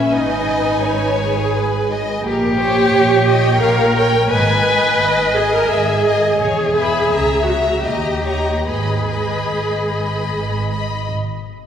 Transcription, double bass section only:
0.00 0.11 A#1 medium
0.11 2.20 G#1 medium
2.24 2.85 A#1 medium
2.93 3.53 A#1 medium
3.61 4.23 A#1 medium
4.31 4.92 G#1 medium
5.01 5.62 G#1 medium
5.70 6.32 G#1 medium
6.40 7.03 E1 medium
7.12 7.77 C#2 medium
7.86 8.57 D#2 medium
8.67 9.40 G#1 soft
9.49 10.21 G#1 soft
10.31 11.01 G#1 soft
11.10 11.66 G#1 medium

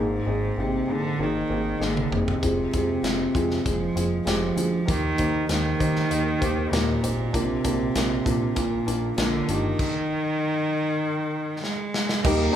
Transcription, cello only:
0.00 0.62 G#2 medium
0.60 0.93 C3 medium
0.92 1.24 D3 medium
1.23 1.85 D#3 medium
1.83 2.15 D3 medium
2.14 3.66 C3 medium
3.68 4.24 F3 medium
4.29 4.92 F3 medium
4.90 5.51 D#3 medium
5.52 6.75 D#3 medium
6.73 7.38 A#2 medium
7.36 8.59 C3 medium
8.58 9.21 A#2 medium
9.20 9.51 D3 medium
9.50 11.64 D#3 medium
11.64 12.27 G#3 medium
12.26 12.56 A#3 loud

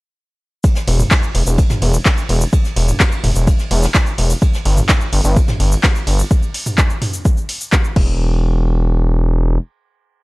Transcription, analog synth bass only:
0.87 1.03 E1 loud
1.35 1.43 E1 loud
1.47 1.62 E1 medium
1.82 1.98 E1 loud
2.29 2.45 E1 medium
2.76 2.92 E1 loud
3.24 3.32 E1 medium
3.36 3.51 E1 medium
3.71 3.86 E1 loud
4.18 4.34 E1 medium
4.65 4.81 G1 loud
5.13 5.20 G1 medium
5.24 5.40 G1 medium
5.60 5.75 G1 loud
6.07 6.23 G1 medium
7.96 9.58 E1 loud

